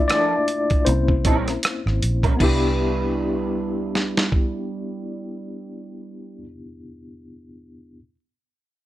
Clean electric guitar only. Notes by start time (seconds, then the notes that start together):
0.10 F3 A#3 D4 A4
0.87 muted clean electric guitar stroke
1.25 G3 C#4 E4 A#4
2.24 G3 C#4 E4 A#4
2.39 G3 D4 E4
2.44 B4